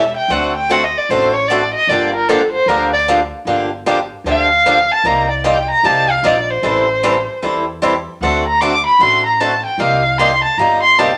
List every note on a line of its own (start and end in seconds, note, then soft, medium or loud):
0.00 0.14 E1 medium
0.00 0.16 E5 medium
0.16 0.32 G5 medium
0.28 0.92 D2 medium
0.28 0.51 D3 medium
0.28 0.52 A3 medium
0.28 0.52 C4 medium
0.28 0.52 F#4 medium
0.28 0.52 A4 medium
0.28 0.55 F#5 medium
0.55 0.73 G5 medium
0.70 0.81 D3 medium
0.70 0.81 A3 medium
0.70 0.82 C4 loud
0.70 0.82 F#4 medium
0.70 0.81 A4 medium
0.70 0.85 F#5 medium
0.84 0.99 D#5 medium
0.97 1.12 D5 medium
1.09 1.72 A1 medium
1.09 1.31 D3 medium
1.09 1.32 A3 medium
1.09 1.32 C4 medium
1.09 1.31 F#4 medium
1.09 1.32 A4 medium
1.09 1.35 C5 medium
1.33 1.50 C#5 medium
1.48 1.61 D3 medium
1.48 1.61 A3 medium
1.48 1.61 C4 medium
1.48 1.61 F#4 medium
1.48 1.61 A4 loud
1.48 1.73 D5 medium
1.74 1.90 D#5 medium
1.87 2.51 G1 medium
1.87 2.10 D3 medium
1.87 2.11 F3 medium
1.87 2.11 A#3 medium
1.87 2.11 D4 medium
1.87 2.11 G4 medium
1.87 2.13 D5 medium
2.14 2.30 A#4 medium
2.28 2.40 D3 medium
2.28 2.40 F3 medium
2.28 2.40 A#3 medium
2.28 2.40 D4 medium
2.28 2.40 G4 medium
2.28 2.51 A4 medium
2.52 2.69 C5 medium
2.66 3.30 D2 medium
2.66 2.89 D3 medium
2.66 2.89 F3 medium
2.66 2.90 A#3 medium
2.66 2.90 D4 medium
2.66 2.90 G4 medium
2.66 2.92 A#4 medium
2.93 3.02 D5 medium
3.08 3.19 D3 medium
3.08 3.19 F3 medium
3.08 3.19 A#3 medium
3.08 3.19 D4 medium
3.08 3.19 G4 medium
3.45 4.09 G1 medium
3.45 3.68 D3 medium
3.45 3.68 F3 medium
3.45 3.68 A#3 medium
3.45 3.68 D4 medium
3.45 3.68 G4 medium
3.86 3.97 D3 medium
3.86 3.98 F3 medium
3.86 3.98 A#3 medium
3.86 3.98 D4 medium
3.86 3.98 G4 medium
4.24 4.88 D2 medium
4.24 4.47 D3 medium
4.24 4.47 F3 medium
4.24 4.47 A#3 medium
4.24 4.47 D4 medium
4.24 4.48 G4 medium
4.24 4.93 F5 medium
4.66 4.77 D3 medium
4.66 4.77 F3 medium
4.66 4.77 A#3 medium
4.66 4.77 D4 medium
4.66 4.77 G4 medium
4.92 5.07 A5 medium
5.04 5.67 C2 medium
5.04 5.26 C3 medium
5.04 5.26 G3 medium
5.04 5.26 A#3 medium
5.04 5.26 D#4 medium
5.04 5.26 G4 medium
5.04 5.29 A#5 medium
5.30 5.46 D5 medium
5.44 5.55 C3 medium
5.44 5.56 G3 medium
5.44 5.56 A#3 medium
5.44 5.56 D#4 medium
5.44 5.56 G4 medium
5.44 5.69 G5 medium
5.70 5.86 A#5 loud
5.83 6.17 C2 medium
5.83 6.05 C3 medium
5.83 6.05 G3 medium
5.83 6.06 A#3 medium
5.83 6.06 D#4 medium
5.83 6.06 G4 medium
5.83 6.12 A5 medium
6.11 6.27 F5 medium
6.23 6.57 A#1 medium
6.23 6.35 C3 medium
6.23 6.35 G3 medium
6.23 6.35 A#3 medium
6.23 6.35 D#4 medium
6.23 6.35 G4 medium
6.23 6.52 D5 medium
6.50 7.43 C5 medium
6.62 7.26 A1 medium
6.62 6.84 E3 medium
6.62 6.85 G3 medium
6.62 6.84 C4 medium
6.62 6.85 E4 medium
6.62 6.85 A4 medium
7.03 7.14 E3 medium
7.03 7.14 G3 medium
7.03 7.14 C4 medium
7.03 7.14 E4 medium
7.03 7.15 A4 loud
7.42 8.06 E2 medium
7.42 7.63 E3 medium
7.42 7.64 G3 medium
7.42 7.64 C4 medium
7.42 7.64 E4 medium
7.42 7.64 A4 medium
7.82 7.93 E3 medium
7.82 7.93 G3 medium
7.82 7.93 C4 medium
7.82 7.93 E4 medium
7.82 7.94 A4 medium
8.21 8.84 D2 medium
8.21 8.43 D3 medium
8.21 8.43 A3 medium
8.21 8.43 C4 medium
8.21 8.43 F#4 medium
8.21 8.44 A4 medium
8.21 8.45 F#5 medium
8.47 8.62 A#5 medium
8.61 8.72 D3 medium
8.61 8.72 A3 medium
8.61 8.73 C4 medium
8.61 8.72 F#4 medium
8.61 8.73 A4 medium
8.61 8.86 D6 medium
8.86 9.03 B5 medium
8.99 9.63 A1 medium
8.99 9.21 D3 medium
8.99 9.22 A3 medium
8.99 9.22 C4 medium
8.99 9.22 F#4 medium
8.99 9.22 A4 medium
8.99 9.25 C6 loud
9.26 9.42 A#5 medium
9.40 9.51 D3 medium
9.40 9.51 A3 medium
9.40 9.51 C4 medium
9.40 9.51 F#4 medium
9.40 9.52 A4 medium
9.40 9.65 A5 medium
9.65 9.81 G5 medium
9.78 10.41 C2 medium
9.78 10.00 C3 medium
9.78 10.01 G3 medium
9.78 10.01 A#3 medium
9.78 10.01 D#4 medium
9.78 10.01 G4 medium
9.78 10.20 F5 medium
10.18 10.30 C3 medium
10.18 10.30 G3 medium
10.18 10.30 A#3 medium
10.18 10.31 D#4 medium
10.18 10.31 G4 medium
10.18 10.43 C6 loud
10.44 10.59 A5 medium
10.57 11.18 G1 medium
10.57 10.80 C3 medium
10.57 10.80 G3 medium
10.57 10.80 A#3 medium
10.57 10.80 D#4 medium
10.57 10.80 G4 medium
10.57 10.82 A#5 medium
10.82 11.00 C6 medium
10.98 11.09 C3 medium
10.98 11.09 G3 medium
10.98 11.10 A#3 medium
10.98 11.10 D#4 medium
10.98 11.10 G4 medium
10.98 11.18 A5 medium